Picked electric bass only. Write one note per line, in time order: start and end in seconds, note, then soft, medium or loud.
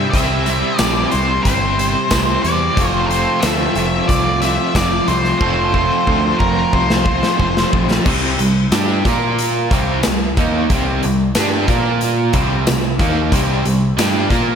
0.14 0.62 C2 medium
0.80 1.04 A#1 medium
1.14 1.38 C2 loud
1.45 1.94 G1 medium
2.12 2.36 C2 medium
2.44 2.69 E2 medium
2.77 3.26 F1 loud
3.43 3.68 D2 medium
3.76 4.00 F1 loud
4.09 4.57 C2 medium
4.75 4.99 F1 loud
5.08 5.32 C2 loud
5.41 5.89 F1 loud
6.08 6.32 D2 loud
6.40 6.64 F1 medium
6.73 7.22 C2 medium
7.39 7.64 F1 medium
7.74 7.97 A#1 medium
8.06 8.36 C2 medium
8.39 8.70 C2 medium
8.72 9.02 G2 loud
9.06 9.67 A#2 loud
9.71 10.01 C2 loud
10.07 10.36 C2 medium
10.37 10.67 D#2 loud
10.70 11.00 C2 medium
11.05 11.34 C2 medium
11.38 11.67 G2 loud
11.68 12.30 A#2 loud
12.34 12.65 C2 loud
12.68 12.98 C2 medium
13.00 13.31 D#2 medium
13.32 13.63 C2 loud
13.66 13.96 C2 medium
13.98 14.29 G2 loud
14.31 14.55 A#2 medium